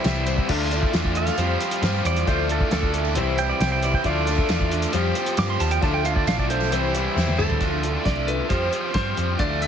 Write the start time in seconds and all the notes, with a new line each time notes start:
Already playing: C3 E3 G3 C4 E4 G4 D5 C6
0.04 C2 G3 C4 E4 G4 C5 E5, snare, closed hi-hat, tambourine
0.17 tambourine
0.26 G3 C4 E4 C5, closed hi-hat, tambourine
0.38 kick
0.48 D2 D3 F3 A3 D4 E4 F4 A4 D5 E5 D6, kick, tambourine, crash
0.61 tambourine
0.71 A3 D4 E4 A4, closed hi-hat, tambourine
0.83 kick
0.93 E2 A3 D4 E4 F4 A4 D5 E5, snare, closed hi-hat, tambourine
1.05 kick, tambourine
1.15 A3 D4 E4 A4 F5, closed hi-hat, tambourine
1.27 snare, closed hi-hat, tambourine
1.37 F2 F3 G3 C4 F4 G4 C5 F5 C6, closed hi-hat
1.59 C4 G4 C5, closed hi-hat, tambourine
1.71 closed hi-hat
1.81 G2 G3 C4 G4 C5 F5, snare, closed hi-hat, tambourine
2.04 E2 C4 G4 C5 D5, closed hi-hat, tambourine
2.16 closed hi-hat
2.27 D2 D3 F3 A3 D4 E4 F4 A4 C5 D5 E5 D6, kick, closed hi-hat, tambourine
2.39 tambourine
2.48 A3 D4 E4 A4, closed hi-hat
2.60 kick
2.70 D2 A3 D4 E4 F4 A4 D5 F5, snare, closed hi-hat, tambourine
2.83 kick, tambourine
2.93 A3 D4 E4 A4, closed hi-hat, tambourine
3.05 tambourine
3.15 C2 C3 E3 G3 C4 E4 G4 C5 E5 C6, closed hi-hat
3.38 G3 C4 E4 C5 G5, closed hi-hat, tambourine
3.49 D5, tambourine
3.60 C2 G3 C4 E4 G4 C5 E5 G5, snare, closed hi-hat, tambourine
3.72 G5
3.82 G3 C4 E4 C5 D5, closed hi-hat, tambourine
3.94 G5, kick
4.04 D2 D3 F3 A3 D4 E4 F4 A4 D5 E5 D6, kick, closed hi-hat, tambourine
4.17 tambourine
4.27 A3 D4 E4 A4, closed hi-hat, tambourine
4.38 kick
4.48 E2 A3 D4 E4 F4 A4 D5 E5, snare, closed hi-hat, tambourine
4.60 kick, tambourine
4.70 A3 D4 E4 A4, closed hi-hat, tambourine
4.82 closed hi-hat, tambourine
4.93 F2 F3 G3 C4 F4 G4 C5 F5 C6, closed hi-hat
5.15 C4 G4 C5, closed hi-hat, tambourine
5.26 closed hi-hat
5.37 G2 G3 C4 G4 C5 F5 D6, snare, closed hi-hat, tambourine
5.50 C6
5.59 D#2 C4 G4 C5 A5, closed hi-hat, tambourine
5.71 G5, closed hi-hat
5.81 D2 D3 F3 A3 D4 E4 F4 A4 D5 E5 A5 D6, kick, closed hi-hat, tambourine
5.93 G5, tambourine
6.04 A3 D4 E4 A4 F5, closed hi-hat, tambourine
6.16 D5, kick
6.26 B1 A3 D4 E4 F4 A4 D5 E5 F5, snare, closed hi-hat, tambourine
6.38 D5, kick, tambourine
6.49 A3 D4 E4 A4 C5, closed hi-hat
6.60 snare, tambourine
6.70 C2 C3 E3 G3 C4 E4 G4 C5 E5 C6, closed hi-hat
6.84 tambourine
6.94 G3 C4 E4 C5, closed hi-hat, tambourine
7.15 E2 G3 C4 E4 G4 C5 E5, snare, tambourine
7.28 high tom
7.38 D2 G3 C4 E4 A4 C5, mid tom, tambourine
7.50 floor tom, tambourine
7.60 D2 D3 F3 A3 D4 E4 F4 A4 E5 D6, kick, closed hi-hat
7.82 A3 D4 E4 A4, closed hi-hat
8.05 C2 A3 D4 E4 A4 D5, kick, snare, closed hi-hat
8.27 A3 D4 E4 A4 B4, closed hi-hat
8.49 F2 F3 G3 C4 F4 G4 C5 F5 C6, kick, closed hi-hat
8.71 C4 G4 C5, closed hi-hat
8.94 G2 C5, kick, snare, closed hi-hat
9.17 F2 C4 G4 C5, closed hi-hat
9.38 D2 D3 F3 A3 D4 E4 F4 A4 D5 E5 D6, kick, closed hi-hat
9.61 A3 D4 E4 A4 E5, closed hi-hat